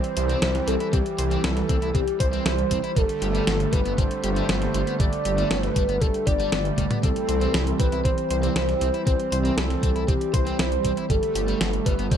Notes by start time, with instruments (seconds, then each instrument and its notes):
Already playing: analog synth pad E3 G3 C4, soft synth lead C5
0.04 closed hi-hat
0.17 detuned saw bass C2, overdriven electric guitar C5, closed hi-hat
0.29 overdriven electric guitar C4, closed hi-hat
0.42 detuned saw bass C2, overdriven electric guitar E4, snare, closed hi-hat
0.55 snare, closed hi-hat
0.68 detuned saw bass C2, overdriven electric guitar C4, soft synth lead A4, closed hi-hat
0.80 overdriven electric guitar E4, closed hi-hat
0.93 detuned saw bass C2, overdriven electric guitar C4, soft synth lead G4, kick, closed hi-hat
1.06 closed hi-hat
1.18 detuned saw bass C2, overdriven electric guitar C5, closed hi-hat
1.31 overdriven electric guitar C4, closed hi-hat
1.44 detuned saw bass C2, overdriven electric guitar E4, soft synth lead A4, snare, closed hi-hat
1.57 snare, closed hi-hat
1.69 detuned saw bass C2, overdriven electric guitar C4, kick, closed hi-hat
1.82 detuned saw bass C2, overdriven electric guitar E4, closed hi-hat
1.94 detuned saw bass C2, overdriven electric guitar C4, soft synth lead G4, kick, closed hi-hat
2.08 closed hi-hat
2.20 detuned saw bass C2, soft synth lead C5, overdriven electric guitar C5, kick, closed hi-hat
2.33 overdriven electric guitar C4, closed hi-hat
2.45 detuned saw bass C2, overdriven electric guitar E4, soft synth lead C5, snare, closed hi-hat
2.58 closed hi-hat
2.71 detuned saw bass C2, overdriven electric guitar C4, kick, closed hi-hat
2.84 overdriven electric guitar E4, closed hi-hat
2.96 detuned saw bass G1, analog synth pad D3 G3 A3, overdriven electric guitar G3, soft synth lead A4, kick, closed hi-hat
3.09 closed hi-hat
3.22 detuned saw bass G1, overdriven electric guitar G4, closed hi-hat
3.35 overdriven electric guitar G3, closed hi-hat
3.47 detuned saw bass G1, overdriven electric guitar B3, snare, closed hi-hat
3.60 closed hi-hat
3.73 detuned saw bass G1, overdriven electric guitar G3, soft synth lead B4, kick, closed hi-hat
3.85 detuned saw bass G1, overdriven electric guitar B3, closed hi-hat
3.98 detuned saw bass G1, overdriven electric guitar G3, soft synth lead C5, kick, closed hi-hat
4.11 closed hi-hat
4.24 detuned saw bass G1, overdriven electric guitar G4, closed hi-hat
4.36 overdriven electric guitar G3, closed hi-hat
4.49 detuned saw bass G1, overdriven electric guitar B3, soft synth lead C5, snare, closed hi-hat
4.62 snare, closed hi-hat
4.74 detuned saw bass G1, overdriven electric guitar G3, closed hi-hat
4.87 overdriven electric guitar B3, closed hi-hat
5.00 detuned saw bass G1, overdriven electric guitar G3, soft synth lead D5, kick, closed hi-hat
5.13 closed hi-hat
5.25 detuned saw bass G1, overdriven electric guitar G4, closed hi-hat
5.38 overdriven electric guitar G3, closed hi-hat
5.50 detuned saw bass G1, overdriven electric guitar B3, soft synth lead B4, snare, closed hi-hat
5.63 snare, closed hi-hat
5.76 detuned saw bass G1, overdriven electric guitar G3, kick, closed hi-hat
5.89 detuned saw bass G1, overdriven electric guitar B3, closed hi-hat
6.01 detuned saw bass G1, overdriven electric guitar G3, soft synth lead A4, kick, closed hi-hat
6.14 closed hi-hat
6.26 detuned saw bass G1, overdriven electric guitar G4, soft synth lead D5, kick, closed hi-hat
6.40 overdriven electric guitar G3, closed hi-hat
6.52 detuned saw bass G1, overdriven electric guitar B3, soft synth lead D5, snare, closed hi-hat
6.65 closed hi-hat
6.78 detuned saw bass G1, overdriven electric guitar G3, kick, closed hi-hat, high tom
6.90 overdriven electric guitar B3, closed hi-hat, mid tom
7.03 detuned saw bass C2, analog synth pad E3 C4, overdriven electric guitar C4, soft synth lead A4, kick, closed hi-hat
7.16 closed hi-hat
7.29 detuned saw bass C2, overdriven electric guitar C5, closed hi-hat
7.41 overdriven electric guitar C4, closed hi-hat
7.54 detuned saw bass C2, overdriven electric guitar E4, snare, closed hi-hat
7.67 closed hi-hat
7.79 detuned saw bass C2, overdriven electric guitar C4, soft synth lead B4, kick, closed hi-hat
7.92 detuned saw bass C2, overdriven electric guitar E4, closed hi-hat
8.04 detuned saw bass C2, overdriven electric guitar C4, soft synth lead C5, kick, closed hi-hat
8.18 closed hi-hat
8.30 detuned saw bass C2, overdriven electric guitar C5, closed hi-hat
8.43 overdriven electric guitar C4, closed hi-hat
8.55 detuned saw bass C2, overdriven electric guitar E4, soft synth lead C5, snare, closed hi-hat
8.69 snare, closed hi-hat
8.81 detuned saw bass C2, overdriven electric guitar C4, closed hi-hat
8.94 overdriven electric guitar E4, closed hi-hat
9.06 detuned saw bass C2, overdriven electric guitar C4, soft synth lead C5, kick, closed hi-hat
9.20 closed hi-hat
9.32 detuned saw bass C2, overdriven electric guitar C5, closed hi-hat
9.45 overdriven electric guitar C4, closed hi-hat
9.57 detuned saw bass C2, overdriven electric guitar E4, soft synth lead A4, snare, closed hi-hat
9.70 snare, closed hi-hat
9.83 detuned saw bass C2, overdriven electric guitar C4, kick, closed hi-hat
9.95 detuned saw bass C2, overdriven electric guitar E4, closed hi-hat
10.07 detuned saw bass C2, overdriven electric guitar C4, soft synth lead G4, kick, closed hi-hat
10.21 closed hi-hat
10.33 detuned saw bass C2, soft synth lead C5, overdriven electric guitar C5, kick, closed hi-hat
10.46 overdriven electric guitar C4, closed hi-hat
10.59 detuned saw bass C2, overdriven electric guitar E4, soft synth lead C5, snare, closed hi-hat
10.72 closed hi-hat
10.84 detuned saw bass C2, overdriven electric guitar C4, kick, closed hi-hat
10.97 overdriven electric guitar E4, closed hi-hat
11.09 detuned saw bass G1, analog synth pad D3 A3, overdriven electric guitar G3, soft synth lead A4, kick, closed hi-hat
11.23 closed hi-hat
11.35 detuned saw bass G1, overdriven electric guitar G4, closed hi-hat
11.48 overdriven electric guitar G3, closed hi-hat
11.61 detuned saw bass G1, overdriven electric guitar B3, snare, closed hi-hat
11.73 closed hi-hat
11.86 detuned saw bass G1, overdriven electric guitar G3, soft synth lead B4, kick, closed hi-hat
11.99 detuned saw bass G1, overdriven electric guitar B3, closed hi-hat
12.11 detuned saw bass G1, overdriven electric guitar G3, soft synth lead C5, kick, closed hi-hat